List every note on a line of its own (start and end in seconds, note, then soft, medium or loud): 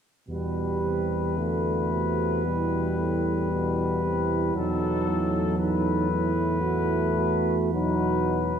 0.28 4.52 E2 soft
0.28 0.79 B2 soft
0.28 1.39 G3 soft
0.28 1.34 G4 soft
0.28 4.52 B4 soft
0.82 1.39 C3 soft
1.37 1.93 D3 soft
1.37 2.45 A3 soft
1.37 2.47 F#4 soft
1.92 2.47 C3 soft
2.45 3.00 B2 soft
2.45 4.57 G3 soft
2.45 4.56 E4 soft
2.99 3.51 A2 soft
3.52 4.06 B2 soft
4.04 4.55 C3 soft
4.55 8.53 E2 soft
4.55 5.10 B2 soft
4.55 6.34 F#3 soft
4.55 5.58 D#4 soft
4.55 5.58 A4 soft
5.08 5.59 A2 soft
5.57 7.40 A2 soft
5.57 6.09 D#4 soft
5.57 7.55 B4 soft
6.09 6.62 E4 soft
6.60 7.69 A3 soft
6.60 7.14 F#4 soft
7.15 7.71 F#4 medium
7.72 8.55 B2 soft
7.72 8.57 F#3 soft
7.72 8.58 D#4 soft
7.72 8.56 B4 soft